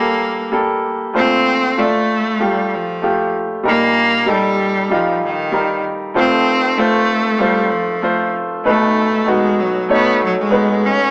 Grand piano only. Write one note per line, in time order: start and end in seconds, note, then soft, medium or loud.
0.00 0.80 G1 medium
0.00 0.80 G2 medium
0.00 1.14 A#2 medium
0.00 0.52 G3 medium
0.00 0.53 A#3 medium
0.00 1.17 G4 medium
0.00 0.53 A4 medium
0.52 0.99 G3 medium
0.52 0.99 A#3 medium
0.52 0.99 A4 medium
1.14 3.61 A#1 soft
1.14 3.61 A#2 medium
1.14 1.61 A3 medium
1.14 1.61 F4 medium
1.14 1.62 C5 medium
1.77 2.24 A3 medium
1.77 2.24 F4 medium
1.77 2.25 D5 medium
2.39 2.86 A3 medium
2.39 2.87 F4 medium
2.39 2.87 G4 medium
3.02 3.49 A3 medium
3.02 3.49 F4 medium
3.02 3.50 G4 medium
3.63 6.11 A#1 medium
3.63 6.11 A#2 medium
3.63 4.11 G3 medium
3.63 4.11 D#4 medium
3.63 4.12 A#4 medium
4.26 4.73 G3 medium
4.26 4.74 D#4 medium
4.26 4.74 A4 medium
4.90 5.36 G3 medium
4.90 5.37 D#4 medium
4.90 5.37 F4 medium
5.52 5.99 G3 medium
5.52 5.99 D#4 medium
5.52 6.00 A#4 medium
6.14 8.61 F1 medium
6.14 8.61 F2 medium
6.14 6.61 A3 medium
6.14 6.61 F4 medium
6.14 6.62 C5 medium
6.77 7.24 A3 medium
6.77 7.24 F4 medium
6.77 7.25 C5 medium
7.40 7.86 A3 medium
7.40 7.87 F4 medium
7.40 7.87 C5 medium
8.02 8.49 A3 medium
8.02 8.49 F4 medium
8.02 8.50 C5 medium
8.64 11.11 B1 medium
8.64 11.11 B2 medium
8.64 9.11 A3 medium
8.64 9.11 D#4 medium
8.64 9.12 B4 medium
9.26 9.73 B3 medium
9.26 9.73 D#4 medium
9.26 9.74 F#4 medium
9.89 10.36 A3 medium
9.89 10.36 D#4 medium
9.89 10.36 C#5 medium
10.50 10.97 B3 medium
10.50 10.98 D#4 medium
10.50 10.98 B4 medium